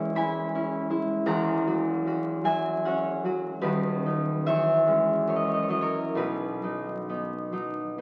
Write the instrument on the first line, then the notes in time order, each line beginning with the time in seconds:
harp
Already playing: E1 E2 G#3 C#4 E4 G#4 C#5 E5
0.15 G#3 E4 G#5 B5
0.55 C#4 E4
0.90 G#3 E4
1.26 E1 E2 F#5 A#5
1.67 F#3 F#4
2.06 C#4 F#4
2.44 F#3 F#4 E5 G#5
2.85 C#4 F#4 C#5 F#5
3.25 F#3 F#4
3.61 D#1 D#2 F#4 B4
4.05 F#3 D#4
4.46 E2 C#5 E5
4.87 G#3 C#4
5.28 F#2 C#5
5.36 D#5
5.47 C#5
5.54 D#5
5.62 C#5
5.69 F#3 E4 D#5
5.81 A#4 C#5
6.15 B1 B2 F#4 B4
6.63 F#3 D#4
7.09 B3 D#4
7.52 F#3 D#4
7.98 B3